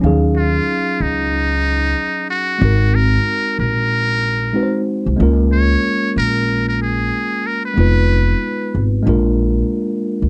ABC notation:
X:1
M:4/4
L:1/16
Q:"Swing 16ths" 1/4=93
K:Ebm
V:1 name="Muted trumpet"
z2 F4 E8 G2- | G2 B4 B8 z2 | z2 d4 B3 B A4 B c- | c6- c z8 z |]
V:2 name="Tine electric piano"
[G,DEAf]16 | [A,=CEGB]12 [A,CEG_c=c]4 | [A,B,DFB]16 | [A,CEFc]8 [A,B,=DFB]8 |]
V:3 name="Upright bass" clef=bass
E,,4 z2 D,,6 z4 | A,,,4 z2 B,,,6 z3 =C,, | D,,4 z2 B,,,6 z4 | F,,,4 z2 A,,,2 B,,,4 z3 =D,, |]